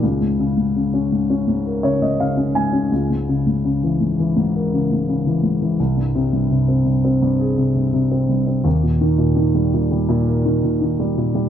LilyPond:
<<
  \new Staff \with { instrumentName = "Grand piano" } { \time 4/4 \key aes \major \tempo 4 = 84 r2 r8 des''16 ees''16 f''8 aes''8 | r1 | r1 | r1 | }
  \new Staff \with { instrumentName = "Grand piano" } { \clef bass \time 4/4 \key aes \major des,16 aes,16 des16 aes,16 des16 des'16 aes,16 des'16 aes,16 bes'16 des16 aes,16 des16 des'16 aes,16 des'16 | des,16 aes,16 des16 aes,16 des16 fes16 aes,16 fes16 aes,16 bes'16 des16 aes,16 des16 fes16 aes,16 fes16 | c,16 g,16 c16 g,16 c16 c'16 g,16 c'16 g,16 aes'16 c16 g,16 c16 c'16 g,16 c'16 | ees,16 bes,16 ees16 bes,16 ees16 g16 bes,16 g16 bes,16 bes'16 ees16 bes,16 ees16 g16 bes,16 g16 | }
>>